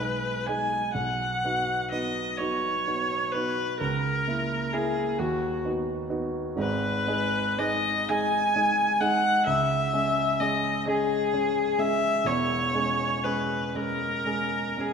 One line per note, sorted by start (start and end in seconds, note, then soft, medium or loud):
0.00 0.95 B1 medium
0.00 0.43 G#3 soft
0.00 0.43 D#4 soft
0.00 0.44 G#4 soft
0.00 0.48 B4 medium
0.46 0.92 G#3 soft
0.46 0.92 D#4 soft
0.46 0.92 G#4 soft
0.46 0.93 G#5 medium
0.94 1.42 B1 medium
0.94 1.89 F#5 medium
1.45 1.88 B3 soft
1.45 1.88 D#4 soft
1.45 1.88 F#4 soft
1.91 2.35 B3 soft
1.91 2.35 D#4 soft
1.91 2.35 F#4 soft
1.91 2.39 D#5 medium
2.37 2.83 B3 soft
2.37 2.82 D#4 soft
2.37 2.83 F#4 medium
2.37 3.33 C#5 medium
2.87 3.30 B3 soft
2.87 3.30 D#4 soft
2.87 3.30 F#4 soft
3.32 3.77 B3 soft
3.32 3.77 D#4 soft
3.32 3.77 F#4 soft
3.32 3.79 B4 medium
3.80 4.26 C#2 medium
3.80 4.74 A#4 medium
4.28 4.69 A#3 soft
4.28 4.69 E4 medium
4.73 5.15 A#3 medium
4.73 5.15 E4 medium
4.73 5.20 G#4 medium
5.18 5.63 D#2 medium
5.18 5.64 F#4 medium
5.65 6.06 B3 soft
5.65 6.06 D#4 soft
5.65 6.06 F#4 medium
6.10 6.52 B3 soft
6.10 6.52 D#4 medium
6.10 6.53 F#4 medium
6.56 7.04 G#1 medium
6.56 7.04 G#2 medium
6.56 7.60 B4 loud
7.08 7.54 G#3 soft
7.08 7.54 D#4 medium
7.08 7.54 G#4 medium
7.58 8.04 G#3 medium
7.58 8.05 D#4 medium
7.58 8.05 G#4 medium
7.58 8.11 D#5 medium
8.09 8.52 G#3 medium
8.09 8.52 D#4 medium
8.09 8.52 G#4 medium
8.09 9.02 G#5 loud
8.56 8.97 G#3 medium
8.56 8.97 D#4 medium
8.56 8.97 G#4 medium
9.00 9.42 G#3 soft
9.00 9.42 D#4 medium
9.00 9.42 G#4 medium
9.00 9.46 F#5 loud
9.46 9.91 C#2 medium
9.46 10.41 E5 loud
9.93 10.36 G#3 medium
9.93 10.36 C#4 medium
9.93 10.36 G#4 medium
10.39 10.83 G#3 medium
10.39 10.83 C#4 medium
10.39 10.83 G#4 medium
10.39 10.86 D#5 medium
10.87 11.29 G#3 medium
10.87 11.29 C#4 medium
10.87 11.29 G#4 medium
10.87 11.81 G#4 medium
11.34 11.75 G#3 medium
11.34 11.75 C#4 medium
11.34 11.76 G#4 medium
11.78 12.22 G#3 medium
11.78 12.22 C#4 medium
11.78 12.22 G#4 medium
11.78 12.28 E5 loud
12.25 12.73 E1 medium
12.25 12.74 E2 medium
12.25 13.26 C#5 loud
12.75 13.21 G#3 soft
12.75 13.21 C#4 soft
12.75 13.21 G#4 medium
13.24 13.71 G#3 soft
13.24 13.71 C#4 soft
13.24 13.72 G#4 medium
13.24 13.77 B4 medium
13.75 14.23 G#3 medium
13.75 14.23 C#4 soft
13.75 14.23 G#4 medium
13.75 14.82 A#4 medium
14.26 14.74 G#3 soft
14.26 14.75 C#4 soft
14.26 14.75 G#4 medium
14.77 14.93 G#3 soft
14.77 14.93 C#4 soft
14.77 14.93 G#4 soft
14.77 14.93 G#4 medium